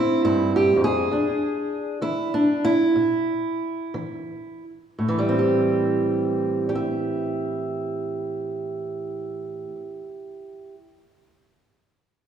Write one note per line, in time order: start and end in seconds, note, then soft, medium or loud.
0.00 0.17 E2 medium
0.00 1.07 A3 soft
0.00 1.08 C4 soft
0.00 0.23 E4 loud
0.24 0.76 G2 medium
0.24 0.53 E4 loud
0.56 0.83 G4 medium
0.76 1.11 F2 medium
0.84 2.02 G#4 loud
1.11 1.94 E2 medium
1.11 2.33 D4 soft
2.02 2.88 E3 medium
2.02 2.33 E4 medium
2.34 2.65 D4 medium
2.65 4.63 E4 loud
2.96 3.86 B2 medium
3.94 4.89 E3 medium
4.99 9.65 A2 medium
5.08 9.75 E3 medium
5.19 6.69 G3 medium
5.29 9.95 C4 medium
5.39 6.69 G4 medium
6.69 10.74 G4 medium
6.75 10.78 E5 medium